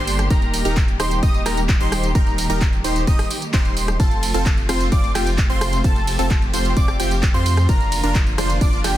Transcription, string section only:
0.00 0.26 D3 medium
0.00 0.27 G3 medium
0.00 3.96 A#3 medium
0.00 3.96 G4 medium
0.31 3.96 D#3 medium
0.31 3.96 G3 medium
4.00 7.65 C3 medium
4.00 8.97 F3 medium
4.00 7.65 A3 medium
4.00 5.83 F4 medium
5.84 7.67 G4 medium
7.69 8.97 D3 medium
7.69 8.97 A#3 medium
7.69 8.97 F4 medium

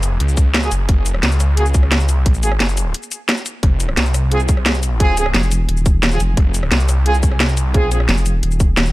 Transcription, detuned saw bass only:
0.00 0.19 F#1 medium
0.20 0.70 C#2 medium
0.72 0.87 F#1 loud
0.89 1.22 F#1 loud
1.23 2.21 C#2 loud
2.21 2.43 B1 loud
2.43 2.59 A1 loud
2.60 2.93 F#1 loud
3.63 3.96 F1 loud
3.97 5.33 C2 medium
6.37 6.70 F1 loud
6.71 7.67 C2 loud
7.67 7.94 B1 loud
7.94 8.07 A#1 loud

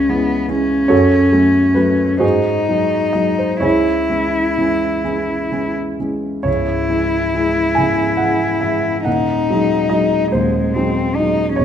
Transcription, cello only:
0.00 0.11 C#4 soft
0.10 0.50 B3 soft
0.49 2.22 C#4 medium
2.24 3.61 D#4 soft
3.64 5.73 E4 soft
6.47 9.03 E4 soft
9.06 10.30 D#4 medium
10.31 10.75 G#3 soft
10.74 11.17 C4 soft
11.16 11.54 D#4 soft
11.55 11.65 C#4 medium

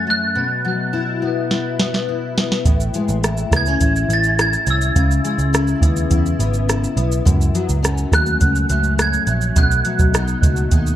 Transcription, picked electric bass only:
2.65 2.89 A1 medium
3.09 3.43 A1 medium
3.51 3.75 C#2 medium
3.81 4.04 A1 medium
4.09 4.55 A1 medium
4.67 4.90 C2 loud
4.96 5.19 C#2 loud
5.38 5.73 C#2 medium
5.81 6.05 D#2 medium
6.11 6.34 E2 medium
6.39 6.85 G#1 medium
6.97 7.20 B1 loud
7.26 7.49 C#2 loud
7.69 8.04 C#2 medium
8.12 8.35 D#2 medium
8.41 8.64 C#2 medium
8.70 9.16 C#2 medium
9.27 9.50 A#1 loud
9.56 9.79 B1 loud
9.99 10.34 B1 medium
10.42 10.65 C#2 medium
10.71 10.95 D#2 loud

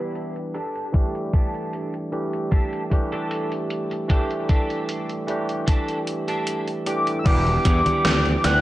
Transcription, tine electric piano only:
0.00 0.52 E3 medium
0.00 0.52 G3 medium
0.00 0.52 B3 medium
0.00 0.53 D4 medium
0.00 0.53 G4 medium
0.92 2.07 E3 medium
0.92 2.08 G3 medium
0.92 2.08 A3 medium
0.92 2.08 D4 medium
0.92 2.09 G4 medium
2.12 2.87 E3 medium
2.12 2.87 G3 medium
2.12 2.87 A3 medium
2.12 2.87 D4 medium
2.12 2.87 G4 medium
2.90 4.05 E3 medium
2.90 4.05 G3 medium
2.90 4.06 A3 medium
2.90 4.06 D4 medium
2.90 4.06 G4 medium
4.08 5.23 E3 medium
4.08 5.24 G3 medium
4.08 5.24 A3 medium
4.08 5.24 D4 medium
4.08 5.25 G4 loud
5.27 6.82 E3 medium
5.27 6.82 G3 medium
5.27 6.83 A3 medium
5.27 6.83 D4 medium
5.27 6.83 G4 medium
6.86 7.02 E3 medium
6.86 7.02 G3 medium
6.86 7.02 A3 medium
6.86 7.03 D4 medium
6.86 7.03 G4 medium
7.24 8.39 E3 medium
7.24 8.39 G3 medium
7.24 8.40 B3 medium
7.24 8.40 D4 medium
7.24 8.40 G4 loud
8.43 8.61 E3 medium
8.43 8.61 G3 medium
8.43 8.61 B3 medium
8.43 8.61 D4 medium
8.43 8.61 G4 medium

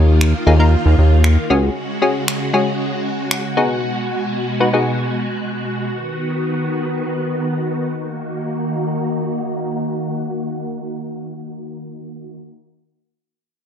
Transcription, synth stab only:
0.00 0.15 A#3 medium
0.00 0.15 D#4 medium
0.00 0.15 F4 medium
0.00 0.15 A#4 loud
0.47 0.54 A#3 medium
0.47 0.54 D#4 medium
0.47 0.54 F4 medium
0.47 0.55 G#4 loud
0.59 1.21 A#3 medium
0.59 1.21 D#4 medium
0.59 1.21 F4 medium
0.59 1.21 A#4 loud
1.50 1.91 G#3 medium
1.50 1.92 C#4 medium
1.50 1.92 F#4 medium
1.50 1.92 G#4 loud
2.02 2.32 G#3 medium
2.02 2.33 C#4 medium
2.02 2.33 F#4 medium
2.02 2.33 G#4 loud
2.53 3.15 G#3 medium
2.53 3.15 C#4 medium
2.53 3.15 F#4 medium
2.53 3.15 G#4 loud
3.57 4.40 B3 loud
3.57 4.40 D#4 medium
3.57 4.40 F#4 medium
3.57 4.40 G#4 loud
4.60 4.68 B3 medium
4.60 4.68 D#4 medium
4.60 4.68 F#4 medium
4.60 4.68 B4 loud
4.73 5.35 B3 medium
4.73 5.35 D#4 medium
4.73 5.35 F#4 medium
4.73 5.35 G#4 medium

